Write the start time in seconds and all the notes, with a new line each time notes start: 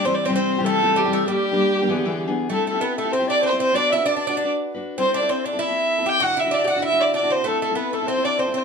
0.05 E3 G3 C4 G4 C5
0.15 D5
0.25 C4 G4 C5
0.29 C3 E3 G3
0.35 C4 C5
0.58 C3 E3 G3 C4 G4
0.65 A3 A4
0.83 C3 E3 G3 C4 G4
0.96 G3 G4
1.05 C3 E3 G3 C4 G4
1.12 A3 A4
1.26 G3 A#3 D4 G4
1.51 G3 A#3 D4 G4
1.82 G3 A#3 D4 G4
1.89 D3 E3 B3 D4 G#4
2.06 D3 E3 B3 D4 G#4
2.27 D3 E3 B3 D4 G#4
2.49 G3 A3 C4 E4 G4 A4
2.67 A3 A4
2.73 C4 E4 G4
2.81 B3 B4
2.97 A3 A4
3.04 C4 E4 G4
3.12 C4 C5
3.19 C4 E4 G4
3.28 D4 D5
3.41 C4 C5
3.45 C5
3.50 C4 E4 G4
3.60 C4 C5
3.73 B3 D4 F#4 B4 D5
3.90 E4 E5
3.97 D4 F#4 B4
4.04 D4 D5
4.17 D4
4.27 D4 F#4 B4
4.37 D4
4.44 D4 F#4 B4
4.74 D4 F#4 B4
4.97 G3 C4 E4 A4 C5
5.14 D4 D5
5.21 C4 E4 A4
5.28 C4 C5
5.45 D4 D5
5.53 C4 E4 A4
5.58 E4 E5
5.68 C4 E4 A4
5.98 C4 E4 A4
6.06 G4 G5
6.20 D3 D4 E4 F#4 F#5
6.37 E4 E5
6.44 D3 D4 E4 F#4
6.51 D4 D5
6.64 F#4 G4
6.71 F#5
6.76 D3 D4 E4 F#4
6.82 E4 E5
6.92 D3 D4 E4 F#4
6.99 D5
7.14 D4 D5
7.23 D3 D4 E4 F#4
7.30 C4 C5
7.44 A3 C4 E4 A4
7.61 A3 A4
7.70 C4 E4 A4
7.75 B3 B4
7.91 A3 A4
8.00 C4 E4 A4
8.07 C4 C5
8.16 C4 E4 A4
8.24 D4 D5
8.38 C4 C5
8.46 C4 E4 A4
8.54 C4 C5